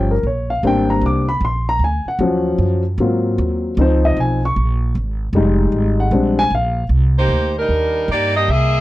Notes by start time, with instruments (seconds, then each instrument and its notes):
Already playing: upright bass G1, grand piano F3 G3 C#4 G5
0.11 grand piano A#4
0.23 upright bass A#1, grand piano C#5
0.50 grand piano F5
0.63 upright bass G#1, grand piano G3 A#3 C4 D4
0.67 grand piano G5
0.90 grand piano A#5
1.01 upright bass C2
1.06 grand piano D6
1.29 grand piano B5
1.41 upright bass A#1
1.45 grand piano C6
1.69 grand piano A#5
1.79 upright bass D2
1.84 grand piano G#5
2.05 grand piano F#5, muted upright bass stroke
2.19 upright bass D#2, grand piano F3 F#3 C#4
2.58 upright bass F#2
2.98 upright bass G#2, grand piano F#3 A#3 C4 F4
3.38 upright bass D#2
3.77 upright bass C#2, grand piano F3 C4 D#4
3.81 grand piano C5
4.05 grand piano D#5
4.17 upright bass B1, grand piano G#5
4.45 grand piano C#6
4.56 upright bass A#1
4.95 upright bass G#1
5.33 upright bass F1, grand piano G3 G#3 D#4
5.72 upright bass G#1
6.00 grand piano F#5
6.11 upright bass A#1, grand piano G3 G#3 C4 D4
6.39 grand piano G#5
6.50 upright bass A#1
6.55 grand piano F5
6.89 upright bass C2
7.19 saxophone section A#3 D#4 G4 C5
7.28 upright bass D2
7.59 saxophone section G3 D4 D#4 A#4
7.69 upright bass D#2
8.08 upright bass G2, saxophone section A#3 D#4 D5
8.12 saxophone section G4
8.36 saxophone section A#3 D4 G4 D#5
8.48 upright bass C2, saxophone section A#3 G#4 D#5 E5